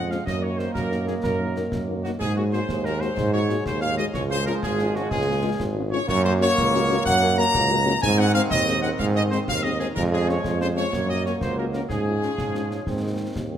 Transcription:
Already playing: F2 F3 G#3
0.10 F3 G#3 C#4 F5, snare
0.26 F#2 D#3 A#3 D#5, concert bass drum, snare
0.43 A#3 D#4 C#5
0.58 A#3 D#4 C5, snare
0.74 F#2 A#4, concert bass drum, snare
0.91 A#3 D#4, snare
1.07 A#3 D#4 G#4, snare
1.23 F#2 A#4, concert bass drum, snare
1.40 A#3 D#4
1.56 A#3 D#4, snare
1.72 F#2, concert bass drum, snare
1.88 A#3 D#4
2.03 A#3 D#4 F#4, snare
2.20 G#2 F#3 G#3 G#4, concert bass drum, snare, crash
2.36 G#3 A#3 F#4
2.52 G#3 A#3 F#4 C5, snare
2.68 D#2, concert bass drum, snare
2.85 G#3 A#3 F#4 A#4, snare
3.01 G#3 A#3 F#4 C5, snare
3.17 G#2, concert bass drum, snare
3.33 G#3 A#3 F#4 C#5
3.49 G#3 A#3 F#4, snare
3.66 D#2 C5, concert bass drum, snare
3.81 G#3 A#3 F#4 F5
3.98 G#3 A#3 F#4 D#5, snare
4.14 C#2 F3 G#3 C#5, concert bass drum, snare
4.30 G#3 C#4 F4 C5
4.46 G#3 C#4 F4 A#4, snare
4.62 G#1 G#4, concert bass drum, snare
4.79 G#3 C#4 F4, snare
4.94 G#3 C#4 F4 F#4, snare
5.10 C#2 G#4, concert bass drum, snare
5.27 G#3 C#4 F4
5.43 G#3 C#4 F4
5.60 G#1, concert bass drum, snare
5.76 G#3 C#4 F4
5.91 G#3 C#4 F4 C#5
6.07 F#2 F#3 A#3 C#5, concert bass drum, snare, crash
6.24 A#3 C#4 F#4 C5
6.40 A#3 C#4 F#4 C#5, snare
6.58 C#2, concert bass drum, snare
6.73 A#3 C#4 F#4, snare
6.90 A#3 C#4 F#4, snare
7.05 F#2 F#5, concert bass drum, snare
7.22 A#3 C#4 F#4
7.37 A#3 C#4 F#4 A#5, snare
7.54 C#2, concert bass drum, snare
7.69 A#3 C#4 F#4
7.86 A#3 C#4 F#4, snare
8.02 G#2 D#3 C4 G#5, concert bass drum, snare
8.17 G#3 C4 D#4 F#5
8.34 G#3 C4 D#4 F5, snare
8.50 D#2 D#5, concert bass drum, snare
8.66 G#3 C4 D#4, snare
8.82 G#3 C4 D#4 F#5, snare
8.98 G#2 F5, concert bass drum, snare
9.15 G#3 C4 D#4 D#5
9.31 G#3 C4 D#4 C5, snare
9.48 D#2 F5, concert bass drum, snare
9.63 G#3 C4 D#4 D#5
9.80 G#3 C4 D#4 G#4, snare
9.95 F2 F3 G#3 A#4, concert bass drum, snare, crash
10.12 G#3 C#4 G#4
10.28 G#3 C#4 G#4 C#5, snare
10.44 F2, concert bass drum, snare
10.61 G#3 C#4 G#4 C5, snare
10.76 G#3 C#4 G#4 C#5, snare
10.92 F#2 F#3 A#3, concert bass drum, snare
11.09 A#3 C#4 F#4 D#5
11.25 A#3 C#4 F#4 C#5, snare
11.41 C#2 C5, concert bass drum, snare
11.57 A#3 C#4 F#4 A#4
11.73 A#3 C#4 F#4 A#4, snare
11.89 G#2 F3 C#4 G#4, concert bass drum, snare
12.07 G#3 C#4 F4
12.22 G#3 C#4 F4, snare
12.38 G#2, concert bass drum, snare
12.55 G#3 C#4 F4, snare
12.71 G#3 C#4 F4, snare
12.87 G#2 D#3 C4, concert bass drum, snare
13.03 G#3 C4 D#4
13.19 G#3 C4 D#4
13.36 D#2, concert bass drum, snare
13.51 G#3 C4 D#4

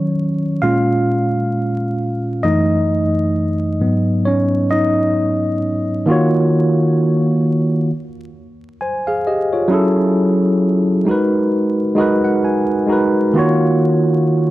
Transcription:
Already playing: D#3 F#3 C#4 C#5
0.62 A#2 G#3 C#4 F4 F5
2.43 F#2 E3 A3 D#4 D#5
3.80 G#2 F#3 B3
4.25 C#4 C#5
4.70 D#4 D#5
6.06 D#3 A#3 F4
6.10 F#4 C#5
8.81 C5 G#5
9.07 G#4 F5
9.27 G4 D#5
9.53 F4 C#5
9.68 F#3 C#4 E4
9.72 G#4 A4
11.05 G#3 D#4 F#4
11.09 A#4 B4
11.95 G#3 D#4 F#4 D#5
12.00 A#4 B4
12.25 F#5
12.45 G#5
12.86 G#3 D#4 F#4 A#5
12.91 A#4 B4
13.33 D#3 A#3 F4
13.38 F#4 C#5

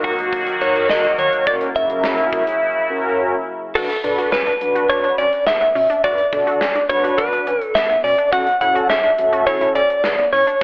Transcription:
Already playing: D#3 F#3 A#3 D#4 F#4 A#4
0.04 D#2 F#4, kick, open hi-hat
0.18 D#2, closed hi-hat
0.33 D#2, kick, closed hi-hat
0.47 closed hi-hat
0.61 D#2 D#4 F#4 A#4 C#5, closed hi-hat
0.76 closed hi-hat
0.89 D#2 D#5, snare
1.04 closed hi-hat
1.18 D#3 C#5, closed hi-hat
1.33 closed hi-hat
1.47 F#1 C#3 C#4 E4 F#4 A#4 D5, kick, closed hi-hat
1.61 closed hi-hat
1.75 F#2 E5, closed hi-hat
1.90 C#4 F#4 A#4, closed hi-hat
2.04 F#1, snare
2.18 closed hi-hat
2.33 F#1, kick, closed hi-hat
2.47 F#1, closed hi-hat
2.90 C#4 F#4 A#4
3.75 B1 D4 F#4 A4 B4, kick, crash
3.90 closed hi-hat
4.04 B2 D4 F#4 B4, closed hi-hat
4.18 F#4, closed hi-hat
4.32 B1 C#4 B4, snare
4.47 D4, closed hi-hat
4.61 B1 D4 F#4 B4, closed hi-hat
4.75 B1 F#4, closed hi-hat
4.90 B1 D4 C#5, kick, closed hi-hat
5.04 D4, closed hi-hat
5.18 B1 C#4 D5, closed hi-hat
5.33 closed hi-hat
5.47 B1 B3 E5, snare
5.61 B3, closed hi-hat
5.75 B2 C#4, open hi-hat
5.90 D4, closed hi-hat
6.04 B1 D4 F#4 B4 D5, kick, closed hi-hat
6.18 closed hi-hat
6.33 B2 D4 F#4 A4, kick, closed hi-hat
6.47 F#4, closed hi-hat
6.61 B1 C#4, snare
6.75 D4, closed hi-hat
6.89 B1 D4 F#4 B4 C#5, kick, closed hi-hat
7.04 B1 F#4, closed hi-hat
7.18 B1 D4 B4, kick, closed hi-hat
7.33 D4, closed hi-hat
7.47 B1 C#4, closed hi-hat
7.61 A4, closed hi-hat
7.75 B1 B3 E5, snare
7.90 B3, closed hi-hat
8.04 B2 C#4 D5, open hi-hat
8.18 D4, closed hi-hat
8.32 A1 C#4 F#4 A4 F#5, kick, closed hi-hat
8.47 closed hi-hat
8.61 A2 C#4 E4 F#4 A4 F#5, closed hi-hat
8.75 F#4, closed hi-hat
8.89 A1 C#4 E5, snare
9.04 D4, closed hi-hat
9.18 A1 C#4 F#4 A4, closed hi-hat
9.32 A1 F#4, closed hi-hat
9.47 A1 E4 C#5, kick, closed hi-hat
9.61 E4, closed hi-hat
9.75 A1 C#4 D5, closed hi-hat
9.90 closed hi-hat
10.04 A1 B3, snare
10.18 B3, closed hi-hat
10.33 A2 C#4 C#5, open hi-hat
10.47 D4, closed hi-hat

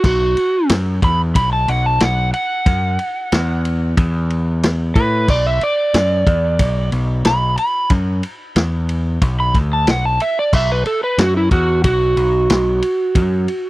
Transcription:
0.04 B1 F#4, kick, crash
0.37 ride
0.69 F#2, snare, ride
1.02 E2 B5, kick, ride
1.35 B1 B5, kick, ride
1.53 A5
1.68 B1 F#5, ride
1.86 A5
2.00 B1 F#5, snare, ride
2.34 F#5, ride
2.66 F#2, kick, ride
2.99 ride
3.32 E2, snare, ride
3.65 ride
3.97 E2, kick, ride
4.30 ride
4.63 snare, ride
4.95 A2 B4, kick, ride
5.28 B1 D5, kick, crash
5.47 E5
5.61 D5, ride
5.94 F#2, snare, ride
6.26 E2, kick, ride
6.59 B1, kick, ride
6.92 B1, ride
7.25 B1 B5, snare, ride
7.58 B5, ride
7.90 F#2, kick, ride
8.23 ride
8.56 E2, snare, ride
8.89 ride
9.22 B1, kick, ride
9.40 B5
9.55 D2, kick, ride
9.73 A5
9.87 B1 F#5, snare, ride
10.05 A5
10.20 E5, ride
10.39 D5
10.53 B1 E5, kick, crash
10.72 B4
10.86 A4, muted picked electric bass stroke, ride
11.04 B4
11.18 F#2 F#4, snare, ride
11.37 E4
11.51 E2 F#4, kick, ride
11.84 B1 F#4, kick, ride
12.16 B1, ride
12.50 B1, snare, ride
12.82 ride
13.15 F#2, kick, ride
13.48 ride

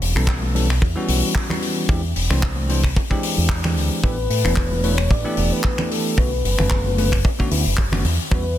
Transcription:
0.01 E1, open hi-hat
0.15 B1 E3 G3 B3 C#4 A4, finger snap
0.27 kick, clap
0.43 high conga
0.54 E3 G3 B3 C#4 A4, open hi-hat, high conga
0.70 finger snap
0.82 E2, kick
0.96 E3 G3 B3 C#4 F#4
1.08 B1, open hi-hat
1.35 kick, clap
1.49 E3 G3 B3 C#4 F#4, finger snap, low conga
1.62 open hi-hat
1.89 E2 E3 G#3 C4 D4 G4, kick
2.16 E1, open hi-hat
2.30 C2 E3 G#3 C4 D4 C5, finger snap
2.43 kick, clap
2.56 high conga
2.69 E3 G#3 C4 D4 C5, open hi-hat, high conga
2.84 finger snap, kick
2.97 kick
3.10 E3 G#3 C4 D4 G4, kick
3.23 open hi-hat
3.38 E2
3.49 kick, clap
3.64 E3 G#3 C4 D4 G4, finger snap, low conga
3.76 D2, open hi-hat
4.03 A1 E3 A3 B3 D4 G4 B4, kick
4.30 A2, open hi-hat
4.44 E1 E3 A3 B3 D4 B4, finger snap
4.56 kick, clap
4.72 high conga
4.83 E3 A3 B3 D4 B4 C#5, open hi-hat, high conga
4.98 finger snap
5.11 A1 D5, kick
5.25 E3 A3 B3 D4 G4
5.37 E1, open hi-hat
5.52 B4
5.63 kick, clap
5.78 E3 A3 B3 D4 G4, finger snap, low conga
5.91 A4, open hi-hat
6.17 B1 D3 A3 B3 C#4 F#4 B4, kick
6.44 F#1, open hi-hat
6.58 F#1 D3 A3 B3 C#4 B4, finger snap, low conga
6.70 kick, clap
6.86 high conga
6.98 D3 A3 B3 C#4 B4, open hi-hat, high conga
7.12 finger snap, kick
7.25 kick
7.39 D3 A3 B3 C#4 F#4, kick
7.51 D2 D3 A3 B3 C#4 E4, open hi-hat
7.66 F#1
7.77 kick, clap
7.92 D3 A3 B3 C#4 F#4, finger snap, low conga
8.04 E2, open hi-hat, low conga
8.31 E2 E3 G3 B3 C#4 F#4 B4, kick

